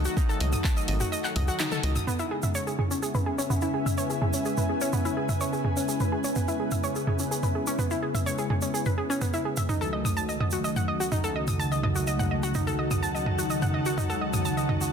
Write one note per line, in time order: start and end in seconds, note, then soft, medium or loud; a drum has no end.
0.00 2.03 D#3 medium
0.00 2.03 F#3 medium
0.00 2.03 A3 medium
0.00 2.07 D#4 medium
0.00 2.03 F#4 medium
0.00 2.07 A4 medium
0.00 3.57 F#5 medium
0.00 2.07 A5 medium
0.05 0.14 F#4 loud
0.05 shaker medium
0.17 0.28 D#4 loud
0.17 kick loud
0.17 shaker medium
0.29 0.38 A4 loud
0.29 shaker soft
0.40 0.55 C#2 loud
0.40 0.50 D#5 medium
0.40 open hi-hat loud
0.52 0.62 D#6 medium
0.52 mid tom medium
0.52 shaker medium
0.64 0.74 A5 loud
0.64 kick loud
0.64 clap loud
0.64 shaker medium
0.77 0.86 D#5 medium
0.77 shaker soft
0.88 1.03 G#1 medium
0.88 0.94 D#5 medium
0.88 open hi-hat loud
1.00 1.06 F#4 medium
1.00 mid tom medium
1.00 shaker medium
1.12 1.24 D#5 medium
1.12 shaker medium
1.24 1.33 F#5 medium
1.24 clap soft
1.24 shaker soft
1.36 1.50 C#2 medium
1.36 1.47 D#5 medium
1.36 mid tom medium
1.36 open hi-hat loud
1.48 1.57 F#4 loud
1.48 shaker medium
1.59 1.71 D#4 medium
1.59 clap loud
1.59 high tom medium
1.59 shaker medium
1.71 1.81 A4 loud
1.71 high tom medium
1.71 shaker soft
1.83 1.98 C#2 loud
1.83 1.93 D#5 medium
1.83 open hi-hat loud
1.96 2.05 D#6 medium
1.96 mid tom medium
1.96 shaker medium
2.07 9.65 C#3 medium
2.07 9.65 G#3 medium
2.07 9.65 B3 medium
2.07 2.19 B3 loud
2.07 11.03 C#4 medium
2.07 9.65 E4 medium
2.07 mid tom medium
2.07 shaker medium
2.19 2.29 E4 loud
2.19 shaker soft
2.31 2.41 G#4 medium
2.41 11.09 B4 medium
2.41 9.69 E5 medium
2.41 2.52 E5 medium
2.41 mid tom medium
2.41 shaker medium
2.48 9.69 G#5 medium
2.55 2.64 C#5 medium
2.55 shaker medium
2.67 2.76 G#4 medium
2.67 shaker soft
2.79 2.84 G#4 medium
2.79 mid tom medium
2.91 2.96 C#4 medium
2.91 shaker medium
3.02 3.14 G#4 medium
3.02 shaker medium
3.14 3.24 B4 medium
3.14 mid tom medium
3.14 shaker soft
3.26 3.38 G#4 medium
3.38 3.48 C#4 medium
3.38 shaker medium
3.50 3.62 B3 loud
3.50 mid tom medium
3.50 shaker medium
3.61 3.71 E4 loud
3.61 shaker soft
3.74 3.83 G#4 medium
3.86 3.95 E5 medium
3.86 mid tom medium
3.86 shaker medium
3.98 4.07 C#5 medium
3.98 shaker medium
4.10 4.19 G#4 medium
4.10 shaker soft
4.22 4.27 G#4 medium
4.22 mid tom medium
4.33 4.39 C#4 medium
4.33 shaker medium
4.45 4.57 G#4 medium
4.45 shaker medium
4.57 4.67 B4 medium
4.57 mid tom medium
4.57 shaker soft
4.69 4.81 G#4 medium
4.81 4.91 C#4 loud
4.81 shaker medium
4.93 5.05 B3 medium
4.93 mid tom medium
4.93 shaker medium
5.05 5.14 E4 loud
5.05 shaker soft
5.17 5.26 G#4 medium
5.29 5.38 E5 medium
5.29 mid tom medium
5.29 shaker medium
5.41 5.50 C#5 medium
5.41 shaker medium
5.53 5.62 G#4 medium
5.53 shaker soft
5.64 5.70 G#4 medium
5.64 mid tom medium
5.77 5.82 C#4 medium
5.77 shaker medium
5.88 6.00 G#4 medium
5.88 shaker medium
6.00 6.10 B4 medium
6.00 mid tom medium
6.00 shaker soft
6.12 6.24 G#4 medium
6.24 6.33 C#4 medium
6.24 shaker medium
6.35 6.47 B3 medium
6.35 mid tom medium
6.35 shaker medium
6.48 6.57 E4 medium
6.48 shaker soft
6.60 6.69 G#4 medium
6.71 6.81 E5 medium
6.71 mid tom medium
6.71 shaker medium
6.84 6.93 C#5 medium
6.84 shaker medium
6.95 7.05 G#4 medium
6.95 shaker soft
7.07 7.13 G#4 medium
7.07 mid tom medium
7.19 7.25 C#4 medium
7.19 shaker medium
7.31 7.43 G#4 medium
7.31 shaker medium
7.43 7.53 B4 medium
7.43 mid tom medium
7.43 shaker soft
7.55 7.67 G#4 medium
7.67 7.76 C#4 loud
7.67 shaker medium
7.79 7.90 B3 loud
7.79 mid tom medium
7.79 shaker medium
7.91 8.00 E4 medium
7.91 shaker soft
8.03 8.12 G#4 medium
8.15 8.24 E5 medium
8.15 mid tom medium
8.15 shaker medium
8.26 8.36 C#5 loud
8.26 shaker medium
8.38 8.48 G#4 medium
8.38 shaker soft
8.50 8.56 G#4 medium
8.50 mid tom medium
8.62 8.68 C#4 medium
8.62 shaker medium
8.74 8.85 G#4 medium
8.74 shaker medium
8.85 8.95 B4 medium
8.85 mid tom medium
8.85 shaker soft
8.98 9.09 G#4 medium
9.10 9.19 C#4 loud
9.10 shaker medium
9.21 9.33 B3 medium
9.21 mid tom medium
9.21 shaker medium
9.34 9.43 E4 loud
9.34 shaker soft
9.45 9.55 G#4 medium
9.57 9.67 E5 medium
9.57 mid tom medium
9.57 shaker medium
9.69 14.93 C#2 medium
9.69 14.93 C#3 medium
9.69 14.93 D#3 medium
9.69 14.93 F#3 medium
9.69 13.46 A3 medium
9.69 9.81 D#4 medium
9.69 14.93 F#4 medium
9.69 mid tom medium
9.69 shaker medium
9.81 9.90 A4 loud
9.81 shaker soft
9.93 10.02 D#5 medium
10.05 10.14 D#6 medium
10.05 mid tom medium
10.05 shaker medium
10.15 14.93 D#4 medium
10.15 10.26 A5 loud
10.15 shaker medium
10.29 10.38 D#5 medium
10.29 shaker soft
10.40 10.46 D#5 medium
10.40 mid tom medium
10.51 10.58 F#4 medium
10.51 shaker medium
10.64 10.76 D#5 medium
10.64 shaker medium
10.76 10.86 F#5 medium
10.76 mid tom medium
10.76 shaker soft
10.88 11.00 D#5 medium
11.00 11.09 F#4 medium
11.00 14.93 F#5 medium
11.00 shaker medium
11.12 11.23 D#4 medium
11.12 mid tom medium
11.12 shaker medium
11.24 11.33 A4 loud
11.24 shaker soft
11.36 11.45 D#5 medium
11.48 11.57 D#6 medium
11.48 mid tom medium
11.48 shaker medium
11.60 11.69 A5 loud
11.60 shaker medium
11.72 11.81 D#5 medium
11.72 14.93 A5 medium
11.72 shaker soft
11.83 11.89 D#5 medium
11.83 mid tom medium
11.95 12.01 F#4 medium
11.95 shaker medium
12.07 12.19 D#5 medium
12.07 shaker medium
12.19 12.29 F#5 medium
12.19 mid tom medium
12.19 shaker soft
12.31 12.43 D#5 medium
12.43 12.52 F#4 medium
12.43 shaker medium
12.54 12.66 D#4 medium
12.54 mid tom medium
12.54 shaker medium
12.67 12.76 A4 loud
12.67 shaker soft
12.79 12.88 D#5 medium
12.91 13.00 D#6 medium
12.91 mid tom medium
12.91 shaker medium
13.03 13.12 A5 medium
13.03 shaker medium
13.15 13.24 D#5 medium
13.15 shaker soft
13.26 13.32 D#5 medium
13.26 mid tom medium
13.38 13.44 F#4 medium
13.38 shaker medium
13.50 14.93 G#3 medium
13.50 13.62 D#5 medium
13.50 shaker medium
13.62 13.71 F#5 medium
13.62 mid tom medium
13.62 shaker soft
13.74 13.85 D#5 medium
13.86 13.95 F#4 loud
13.86 shaker medium
13.98 14.09 D#4 loud
13.98 mid tom medium
13.98 shaker medium
14.10 14.19 A4 loud
14.10 shaker soft
14.21 14.31 D#5 medium
14.33 14.43 D#6 medium
14.33 mid tom medium
14.33 shaker medium
14.45 14.55 A5 medium
14.45 shaker medium
14.57 14.67 D#5 medium
14.57 shaker soft
14.69 14.75 D#5 medium
14.69 mid tom medium
14.81 14.87 F#4 medium
14.81 shaker medium